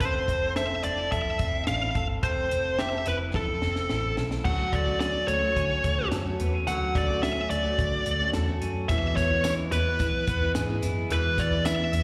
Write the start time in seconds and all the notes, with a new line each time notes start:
Already playing: E4
0.00 F1 C4 A4 C5, kick, closed hi-hat
0.28 F1 C4, kick, closed hi-hat
0.56 A4 E5, snare, closed hi-hat
0.83 F1 D4 D5, closed hi-hat
0.98 E4
1.11 F2 A4 E5, kick, closed hi-hat
1.39 F1 C4, kick, closed hi-hat
1.67 A1 D4 F5, snare, closed hi-hat
1.81 E4
1.95 G1 A4, kick, closed hi-hat
2.23 F1 C4 A4 C5, kick, closed hi-hat
2.51 F1 C4, closed hi-hat
2.79 G4 E5, snare, closed hi-hat
2.93 A4
3.06 F1 E4 B4, closed hi-hat
3.34 F2 A4, kick, snare
3.62 F1 C4, snare
3.76 snare
3.90 A1 E4, snare
4.17 B1 A4, snare
4.31 snare
4.45 D2 D3 F#3 A3 C#4 F#4 F#5, kick, crash
4.73 D2 A3 D5, kick, closed hi-hat
4.86 A3 C#4 F#4
5.00 C#4 D5, snare, closed hi-hat
5.28 D2 A3 C#5, closed hi-hat
5.42 A3 C#4 F#4
5.56 D3 C#4, kick, closed hi-hat
5.84 D2 A3, kick, closed hi-hat
5.97 A3 C#4 F#4
6.12 F#2 A4, snare, closed hi-hat
6.25 A3 C#4 F#4
6.40 E2 B3, closed hi-hat
6.54 C#4
6.67 D2 D3 F#3 A3 C#4 F#4 F#5, closed hi-hat
6.95 D2 A3 D5, kick, closed hi-hat
7.08 A3 C#4 F#4
7.23 C#4 E5, snare, closed hi-hat
7.50 D2 A3 D5, closed hi-hat
7.64 A3 F#4
7.79 D3, kick, closed hi-hat
8.06 D2 A3, closed hi-hat
8.20 A3 C#4 F#4
8.33 E2 A4, snare, closed hi-hat
8.48 A3 C#4 F#4
8.61 F#2 C#4, closed hi-hat
8.89 E2 B2 E3 G#3 B3 E4 E5, kick, closed hi-hat, tambourine
9.16 E2 B3 C#5, kick, closed hi-hat, tambourine
9.30 E3 G#3 B3 E4
9.44 E4 C#5, snare, closed hi-hat, tambourine
9.72 E2 B3 B4, closed hi-hat, tambourine
9.86 E3 G#3 B3 E4
9.99 E3 E4, kick, closed hi-hat, tambourine
10.27 E2 B3, kick, closed hi-hat, tambourine
10.41 E3 G#3 B3 E4
10.55 G#2 G#4, snare, closed hi-hat, tambourine
10.69 E3 G#3 B3 E4
10.82 F#2 E4, closed hi-hat, tambourine
11.10 E2 B2 E3 G#3 B3 E4 B4, closed hi-hat
11.38 E2 B3 D5, kick, closed hi-hat, tambourine
11.51 E3 G#3 B3 E4
11.65 E4 E5, snare, closed hi-hat, tambourine
11.93 E2 B3, closed hi-hat, tambourine